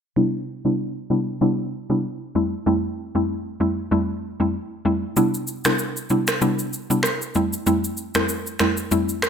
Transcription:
0.16 C3 G3 B3 D4 E4
0.65 C3 G3 B3 D4 E4
1.10 C3 G3 B3 D4 E4
1.41 C3 G3 B3 D4 E4
1.90 C3 G3 B3 D4 E4
2.35 F2 G3 A3 C4 E4
2.66 F2 G3 A3 C4 E4
3.15 F2 G3 A3 C4 E4
3.60 F2 G3 A3 C4 E4
3.91 F2 G3 A3 C4 E4
4.40 F2 G3 A3 C4 E4
4.85 F2 G3 A3 C4 E4
5.17 C3 G3 B3 D4 E4, shaker
5.34 shaker
5.47 shaker
5.65 C3 G3 B3 D4 E4, finger snap, cross-stick, shaker
5.79 shaker
5.97 shaker
6.10 C3 G3 B3 D4 E4, shaker
6.27 finger snap, cross-stick, shaker
6.42 C3 G3 B3 D4 E4, shaker
6.59 shaker
6.73 shaker
6.90 C3 G3 B3 D4 E4, shaker
7.03 finger snap, cross-stick, shaker
7.22 shaker
7.34 F2 G3 A3 C4 E4, shaker
7.53 shaker
7.66 F2 G3 A3 C4 E4, shaker
7.84 shaker
7.97 shaker
8.15 F2 G3 A3 C4 E4, finger snap, cross-stick, shaker
8.29 shaker
8.47 shaker
8.59 F2 G3 A3 C4 E4, finger snap, cross-stick, shaker
8.77 shaker
8.91 F2 G3 A3 C4 E4, shaker
9.09 shaker
9.22 finger snap, cross-stick, shaker

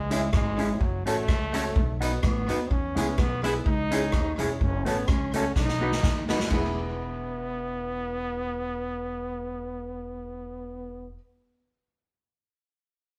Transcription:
Already playing: C#2 G#3
0.10 G#3 C#4 E4 G#4 C#5 E5, closed hi-hat
0.33 G#1 G#3, kick, cross-stick
0.58 G#3 C#4 E4 G#4 C#5 E5, closed hi-hat
0.81 F#1 F#3, kick
1.06 A1 A3 C#4 F#4 A4 C#5, closed hi-hat
1.28 C#2, kick, cross-stick
1.53 A3 C#4 F#4 A4 C#5, closed hi-hat
1.76 B1, kick
2.01 B3 D#4 F#4 B4, closed hi-hat
2.23 A1 B3, kick, cross-stick
2.48 D#2 B3 D#4 F#4 B4, closed hi-hat
2.70 E2 C#4, kick
2.95 C#2 G#3 B3 E4 G#4 B4, closed hi-hat
3.18 B1 B3, kick, cross-stick
3.43 G#3 B3 E4 G#4 B4, closed hi-hat
3.66 C#2 D#4, kick
3.91 G#3 C#4 E4 G#4 C#5, closed hi-hat
4.12 D#2, kick, cross-stick
4.38 E1 G#3 C#4 E4 G#4 C#5, closed hi-hat
4.61 F#1 C#4, kick
4.85 A1 A3 B3 C#4 F#4 A4 C#5, closed hi-hat
5.08 C#2 C#4, kick, cross-stick
5.33 A3 C#4 F#4 A4 C#5, closed hi-hat
5.55 B1 D#4, kick, snare
5.68 snare
5.81 B3 D#4 F#4 B4 D#5
5.92 snare
6.03 D#2, kick, snare
6.29 D#2 B3 D#4 F#4 B4 D#5, snare
6.40 snare
6.50 E1 B3 E4 G#4 B4 E5, kick, crash
6.55 B4

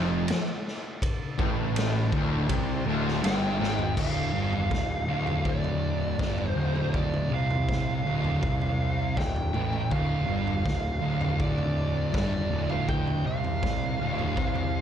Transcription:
Already playing: F1 F2
0.28 snare, ride bell
0.68 snare
1.02 kick, ride bell
1.38 A1 A2, kick
1.76 snare, ride bell
2.12 D1 D2, kick
2.48 C2 C3, kick, ride bell
2.86 D1 D2
3.08 snare
3.23 G1 G2 G5, snare, ride bell
3.59 G#1 G#2, snare
3.79 floor tom
3.96 D1 D2 F5, kick, floor tom, crash
4.33 G1 G2
4.53 floor tom
4.70 D1 D2, kick, snare
5.08 D1 D2
5.27 floor tom
5.45 D5, kick
5.64 floor tom
6.19 G1 G2, kick, snare
6.38 floor tom
6.49 C5
6.55 D1 D2
6.75 mid tom
6.94 D5, kick, floor tom
7.14 mid tom
7.31 C2 C3 F5
7.50 floor tom
7.69 kick, snare, mid tom
8.05 D1 D2
8.24 floor tom
8.42 C2 C3, kick
8.61 floor tom
9.16 D1 D2 G5, kick, snare
9.36 floor tom
9.53 A1 A2, mid tom
9.73 mid tom
9.90 D1 D2 F5, kick, floor tom
10.26 G1 G2
10.47 floor tom
10.64 D1 D2, kick
10.68 snare
11.01 D1 D2
11.21 floor tom
11.40 D5, kick
11.58 floor tom
12.13 G1 G2 D5, kick, snare
12.32 floor tom
12.51 D1 D2
12.69 F5, mid tom
12.88 G5, kick, floor tom
13.07 mid tom
13.25 C2 C3 F5
13.44 floor tom
13.63 kick, snare, mid tom
14.00 D1 D2
14.19 floor tom
14.37 C2 C3, kick
14.55 floor tom

